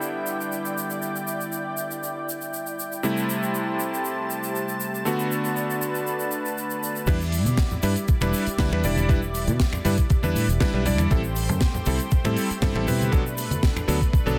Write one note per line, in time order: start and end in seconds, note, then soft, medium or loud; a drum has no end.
0.00 3.01 D3 medium
0.00 3.01 G3 medium
0.00 3.01 B3 medium
0.00 3.01 E4 medium
0.00 3.02 E4 medium
0.00 3.01 D5 medium
0.00 3.01 G5 medium
0.00 shaker medium
0.27 shaker medium
0.41 shaker soft
0.52 shaker soft
0.65 shaker soft
0.78 shaker medium
0.90 shaker soft
1.02 shaker medium
1.16 shaker soft
1.28 shaker medium
1.41 shaker soft
1.52 shaker medium
1.77 shaker medium
1.91 shaker medium
2.04 shaker medium
2.29 shaker medium
2.41 shaker medium
2.54 shaker medium
2.67 shaker soft
2.80 shaker medium
2.92 shaker soft
3.03 5.02 C3 medium
3.03 5.03 G3 medium
3.03 5.03 A3 medium
3.03 5.03 E4 medium
3.03 5.04 G4 medium
3.03 5.04 C5 medium
3.03 7.04 A5 medium
3.03 shaker medium
3.17 shaker soft
3.30 shaker medium
3.43 shaker soft
3.55 shaker medium
3.80 shaker medium
3.94 shaker soft
4.05 shaker medium
4.31 shaker medium
4.44 shaker medium
4.56 shaker medium
4.69 shaker soft
4.81 shaker medium
4.95 shaker soft
5.05 7.04 D3 medium
5.05 7.05 A3 medium
5.05 7.05 B3 medium
5.05 7.05 D4 medium
5.05 7.05 F#4 medium
5.05 7.06 B4 medium
5.05 shaker medium
5.20 shaker soft
5.32 shaker medium
5.45 shaker soft
5.57 shaker medium
5.71 shaker soft
5.82 shaker medium
5.95 shaker medium
6.07 shaker medium
6.20 shaker soft
6.32 shaker medium
6.46 shaker medium
6.58 shaker medium
6.70 shaker soft
6.84 shaker medium
6.96 shaker soft
7.07 7.46 E2 loud
7.07 7.16 G3 medium
7.07 11.07 G3 medium
7.07 7.17 D4 medium
7.07 11.07 E4 medium
7.07 7.17 E4 medium
7.07 7.17 B4 loud
7.07 11.07 D5 medium
7.07 kick loud
7.07 closed hi-hat medium
7.07 crash loud
7.07 shaker medium
7.21 shaker soft
7.32 open hi-hat loud
7.32 shaker medium
7.45 7.56 B2 medium
7.45 closed hi-hat medium
7.45 high conga medium
7.45 shaker medium
7.58 kick loud
7.58 snare loud
7.58 closed hi-hat medium
7.58 shaker medium
7.71 low conga medium
7.71 shaker soft
7.83 7.94 G2 loud
7.83 7.92 G3 medium
7.83 7.92 D4 medium
7.83 7.92 E4 medium
7.83 7.93 B4 medium
7.83 open hi-hat loud
7.83 shaker medium
7.96 closed hi-hat medium
7.96 shaker medium
8.08 muted fingered electric bass stroke soft
8.08 kick loud
8.08 closed hi-hat medium
8.08 shaker medium
8.21 8.32 E1 loud
8.21 8.43 G3 medium
8.21 8.44 D4 medium
8.21 8.44 E4 medium
8.21 8.44 B4 medium
8.21 finger snap medium
8.21 muted conga medium
8.21 high conga medium
8.21 shaker soft
8.34 open hi-hat loud
8.34 shaker loud
8.46 muted fingered electric bass stroke soft
8.46 closed hi-hat medium
8.46 shaker medium
8.58 8.70 D2 medium
8.58 8.69 G3 medium
8.58 8.69 D4 medium
8.58 8.69 E4 medium
8.58 8.69 B4 loud
8.58 kick loud
8.58 snare loud
8.58 closed hi-hat medium
8.58 high conga medium
8.58 shaker medium
8.72 8.82 E2 medium
8.72 8.81 G3 medium
8.72 8.81 D4 medium
8.72 8.81 E4 medium
8.72 8.82 B4 medium
8.72 finger snap medium
8.72 muted conga medium
8.84 9.49 E1 medium
8.84 9.06 G3 medium
8.84 9.06 D4 medium
8.84 9.07 E4 medium
8.84 9.07 D5 medium
8.84 open hi-hat loud
8.84 low conga medium
8.84 shaker medium
8.96 closed hi-hat medium
8.96 high conga loud
8.96 shaker soft
9.09 9.18 G3 medium
9.09 9.18 D4 medium
9.09 9.18 E4 medium
9.09 9.19 B4 medium
9.09 kick loud
9.09 closed hi-hat medium
9.09 shaker medium
9.22 shaker soft
9.35 open hi-hat loud
9.35 shaker medium
9.48 9.58 B2 medium
9.48 closed hi-hat medium
9.48 high conga medium
9.48 shaker soft
9.60 kick loud
9.60 snare loud
9.60 closed hi-hat medium
9.60 shaker medium
9.73 finger snap medium
9.73 low conga medium
9.73 shaker soft
9.85 9.96 G2 loud
9.85 9.94 G3 medium
9.85 9.94 D4 medium
9.85 9.94 E4 medium
9.85 9.94 B4 medium
9.85 open hi-hat loud
9.85 high conga medium
9.85 shaker medium
9.98 kick medium
9.98 closed hi-hat medium
9.98 shaker medium
10.10 kick loud
10.10 closed hi-hat medium
10.10 shaker medium
10.23 10.34 E2 loud
10.23 10.45 G3 medium
10.23 10.45 D4 medium
10.23 10.45 E4 medium
10.23 10.46 B4 medium
10.23 high conga loud
10.23 shaker medium
10.35 10.46 A2 loud
10.35 open hi-hat loud
10.35 shaker medium
10.48 10.59 E1 medium
10.48 closed hi-hat medium
10.48 shaker medium
10.60 10.70 G3 loud
10.60 10.71 D4 medium
10.60 10.71 E4 medium
10.60 10.71 B4 loud
10.60 kick loud
10.60 snare loud
10.60 closed hi-hat medium
10.60 high conga medium
10.60 shaker medium
10.73 10.99 B1 medium
10.73 10.83 G3 medium
10.73 10.83 D4 medium
10.73 10.83 E4 medium
10.73 10.83 B4 medium
10.85 11.08 G3 medium
10.85 11.08 D4 medium
10.85 11.08 E4 medium
10.85 11.08 D5 loud
10.85 open hi-hat loud
10.85 low conga medium
10.85 shaker medium
10.98 11.09 E2 medium
10.98 finger snap medium
10.98 closed hi-hat medium
10.98 high conga loud
10.98 shaker soft
11.11 11.49 A1 loud
11.11 11.20 G3 medium
11.11 14.39 A3 medium
11.11 11.20 C4 medium
11.11 11.20 E4 medium
11.11 13.11 G4 medium
11.11 11.20 A4 medium
11.11 13.11 C5 medium
11.11 kick loud
11.11 closed hi-hat medium
11.11 shaker medium
11.24 shaker soft
11.36 open hi-hat loud
11.36 shaker medium
11.49 11.59 F#2 medium
11.49 closed hi-hat medium
11.49 high conga medium
11.49 shaker soft
11.61 kick loud
11.61 snare loud
11.61 closed hi-hat medium
11.61 shaker medium
11.74 low conga medium
11.74 shaker soft
11.86 11.98 C2 loud
11.86 11.96 G3 medium
11.86 11.96 C4 medium
11.86 11.96 E4 medium
11.86 11.96 A4 medium
11.86 open hi-hat loud
11.86 high conga medium
11.86 shaker medium
11.99 closed hi-hat medium
11.99 shaker medium
12.11 muted fingered electric bass stroke soft
12.11 kick loud
12.11 closed hi-hat medium
12.11 shaker medium
12.24 12.35 A2 loud
12.24 12.47 G3 medium
12.24 12.47 C4 medium
12.24 12.47 E4 medium
12.24 12.47 A4 medium
12.24 finger snap medium
12.24 muted conga medium
12.24 high conga loud
12.24 shaker soft
12.36 open hi-hat loud
12.36 shaker medium
12.50 muted fingered electric bass stroke soft
12.50 closed hi-hat medium
12.50 shaker medium
12.62 12.73 G2 loud
12.62 12.72 G3 loud
12.62 12.72 C4 medium
12.62 12.72 E4 medium
12.62 12.73 A4 loud
12.62 kick loud
12.62 snare loud
12.62 closed hi-hat medium
12.62 high conga medium
12.62 shaker medium
12.75 12.85 A1 loud
12.75 12.84 G3 medium
12.75 12.84 C4 medium
12.75 12.85 E4 medium
12.75 12.85 A4 medium
12.75 finger snap medium
12.75 muted conga medium
12.87 13.51 B2 medium
12.87 13.09 G3 medium
12.87 13.10 C4 medium
12.87 13.10 E4 medium
12.87 13.10 B4 medium
12.87 open hi-hat loud
12.87 low conga medium
12.87 shaker medium
13.01 closed hi-hat medium
13.01 high conga medium
13.01 shaker soft
13.12 13.21 F#3 medium
13.12 13.21 B3 medium
13.12 13.22 D4 medium
13.12 14.39 D4 medium
13.12 13.22 A4 medium
13.12 14.39 B4 medium
13.12 kick loud
13.12 closed hi-hat medium
13.12 shaker medium
13.27 shaker soft
13.38 open hi-hat loud
13.38 shaker medium
13.51 13.61 F#2 medium
13.51 closed hi-hat medium
13.51 high conga medium
13.51 shaker soft
13.63 kick loud
13.63 snare loud
13.63 closed hi-hat medium
13.63 shaker medium
13.76 finger snap medium
13.76 low conga medium
13.76 shaker soft
13.88 13.99 D2 loud
13.88 13.97 F#3 medium
13.88 13.97 B3 medium
13.88 13.97 D4 medium
13.88 13.97 A4 medium
13.88 open hi-hat loud
13.88 shaker medium
14.01 kick medium
14.01 closed hi-hat medium
14.01 shaker soft
14.13 kick loud
14.13 closed hi-hat medium
14.13 shaker medium
14.26 14.37 B1 medium
14.26 14.39 F#3 medium
14.26 14.39 B3 medium
14.26 14.39 D4 medium
14.26 14.39 A4 medium
14.26 high conga medium
14.26 shaker soft